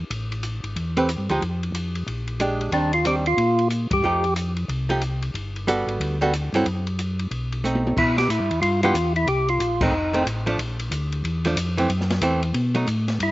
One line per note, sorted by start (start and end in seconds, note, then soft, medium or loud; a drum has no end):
0.10 0.60 A1 medium
0.10 kick soft
0.10 ride medium
0.32 ride soft
0.43 hi-hat pedal soft
0.43 ride medium
0.64 0.75 G#1 medium
0.64 ride soft
0.76 1.17 E2 medium
0.76 kick soft
0.76 ride medium
0.97 1.08 A3 medium
0.97 1.08 C4 medium
0.97 1.08 G4 medium
0.97 1.08 B4 medium
0.97 ride soft
1.09 hi-hat pedal medium
1.09 ride medium
1.18 1.29 G2 medium
1.29 1.40 D2 medium
1.29 1.41 F3 medium
1.29 1.41 G#3 medium
1.29 1.41 D#4 medium
1.29 1.41 G4 medium
1.29 ride soft
1.41 1.71 F2 medium
1.41 kick soft
1.41 ride soft
1.63 ride soft
1.72 2.04 F2 medium
1.72 hi-hat pedal soft
1.72 ride medium
1.95 ride soft
2.07 2.69 A#1 medium
2.07 kick soft
2.07 ride medium
2.28 ride soft
2.40 2.72 G#3 soft
2.40 2.72 D4 soft
2.40 2.73 G4 soft
2.40 hi-hat pedal medium
2.40 ride medium
2.61 ride soft
2.72 3.34 D#2 medium
2.72 2.91 D#3 soft
2.72 2.91 G3 soft
2.72 2.91 C4 soft
2.72 2.91 D4 medium
2.72 2.92 D4 medium
2.72 kick soft
2.72 ride soft
2.93 3.06 F4 medium
2.93 ride soft
3.05 3.24 D#3 soft
3.05 3.24 G3 soft
3.05 3.24 C4 medium
3.05 3.24 D4 soft
3.05 3.16 G4 medium
3.05 hi-hat pedal soft
3.05 ride medium
3.26 3.68 F4 loud
3.26 ride soft
3.37 3.87 A#2 medium
3.37 kick soft
3.37 ride medium
3.59 ride soft
3.70 hi-hat pedal soft
3.70 ride medium
3.91 4.02 G2 medium
3.91 4.34 G4 loud
3.91 kick medium
3.91 ride medium
4.03 4.65 F2 medium
4.03 4.22 F3 medium
4.03 4.23 A3 soft
4.03 4.23 D#4 soft
4.03 4.23 G4 medium
4.24 ride soft
4.36 hi-hat pedal soft
4.36 ride medium
4.57 ride soft
4.68 5.31 C2 medium
4.68 kick soft
4.68 ride medium
4.89 5.00 F3 medium
4.89 5.00 A3 soft
4.89 5.01 D#4 medium
4.89 5.01 G4 medium
4.89 ride soft
5.01 hi-hat pedal soft
5.01 ride medium
5.22 ride soft
5.34 5.84 G1 medium
5.34 kick soft
5.34 ride medium
5.56 ride soft
5.67 6.17 G3 medium
5.67 6.17 B3 medium
5.67 6.17 F#4 medium
5.67 6.17 A4 medium
5.67 hi-hat pedal medium
5.67 ride medium
5.87 5.99 G#1 medium
5.87 ride soft
6.00 6.50 D2 medium
6.00 kick soft
6.00 ride medium
6.21 6.32 G3 medium
6.21 6.32 B3 medium
6.21 6.32 F#4 medium
6.21 6.32 A4 medium
6.21 ride soft
6.33 hi-hat pedal medium
6.33 ride medium
6.53 6.64 G2 medium
6.53 6.65 F#3 medium
6.53 6.65 C4 medium
6.53 6.65 E4 medium
6.53 6.65 A4 medium
6.53 ride soft
6.65 7.28 F#2 medium
6.65 kick soft
6.65 ride medium
6.87 ride soft
6.99 hi-hat pedal soft
6.99 ride medium
7.19 ride soft
7.31 7.93 B1 medium
7.31 kick soft
7.31 ride soft
7.52 ride soft
7.64 7.97 A3 soft
7.64 7.97 C4 soft
7.64 7.97 D#4 soft
7.64 hi-hat pedal medium
7.75 high tom medium
7.87 high tom medium
7.97 8.28 B2 medium
7.97 8.17 E4 loud
7.97 kick medium
7.97 crash medium
8.18 8.30 G4 medium
8.18 snare soft
8.18 ride soft
8.29 8.40 A2 medium
8.29 8.60 E4 medium
8.29 kick soft
8.29 hi-hat pedal soft
8.29 ride medium
8.40 8.51 G2 medium
8.51 8.61 E2 medium
8.51 ride soft
8.62 8.93 G2 medium
8.62 8.81 F4 medium
8.62 kick soft
8.62 ride medium
8.83 8.94 E3 medium
8.83 8.94 B3 medium
8.83 8.94 D4 medium
8.83 9.13 F4 medium
8.83 8.94 G4 medium
8.83 ride soft
8.94 9.26 E2 medium
8.94 kick soft
8.94 hi-hat pedal medium
8.94 ride medium
9.16 9.28 E4 medium
9.16 ride soft
9.27 9.59 C2 medium
9.27 9.49 G4 loud
9.27 kick soft
9.27 ride medium
9.48 9.82 F4 medium
9.48 ride soft
9.60 9.92 A#1 medium
9.60 kick soft
9.60 hi-hat pedal medium
9.60 ride medium
9.81 9.92 D#3 medium
9.81 9.92 A3 medium
9.81 9.92 C4 medium
9.81 10.23 D#4 medium
9.81 kick medium
9.81 crash medium
9.92 10.24 F1 medium
10.13 10.24 D#3 medium
10.13 10.25 A3 medium
10.13 10.25 C4 medium
10.13 ride soft
10.26 10.57 A1 medium
10.26 kick soft
10.26 hi-hat pedal soft
10.26 ride medium
10.46 10.57 F3 medium
10.46 10.57 A3 medium
10.46 10.58 D4 medium
10.46 ride soft
10.58 10.90 A#1 medium
10.58 kick soft
10.58 ride medium
10.79 ride soft
10.91 11.23 D2 medium
10.91 kick soft
10.91 hi-hat pedal soft
10.91 ride medium
11.12 ride soft
11.24 11.56 E2 medium
11.24 kick soft
11.24 ride medium
11.45 11.56 F3 medium
11.45 11.56 A3 medium
11.45 11.56 D4 medium
11.45 ride soft
11.56 11.88 F2 medium
11.56 kick soft
11.56 hi-hat pedal medium
11.56 ride medium
11.77 11.88 E3 medium
11.77 11.88 A3 medium
11.77 11.89 C4 medium
11.77 ride soft
11.89 12.21 F#2 medium
11.89 kick soft
11.89 ride medium
12.01 snare soft
12.10 snare soft
12.10 ride soft
12.21 12.53 E2 medium
12.21 12.41 E3 medium
12.21 12.41 A3 medium
12.21 12.41 C4 medium
12.21 kick soft
12.21 hi-hat pedal medium
12.21 ride medium
12.43 ride soft
12.54 12.86 B2 medium
12.54 kick soft
12.54 ride medium
12.75 12.86 F#3 medium
12.75 12.86 A3 medium
12.75 12.86 D#4 medium
12.75 ride soft
12.87 13.19 A2 medium
12.87 kick soft
12.87 hi-hat pedal medium
12.87 ride medium
13.08 snare soft
13.08 ride soft
13.20 13.31 G2 medium
13.20 13.31 E4 medium
13.20 kick soft
13.20 ride medium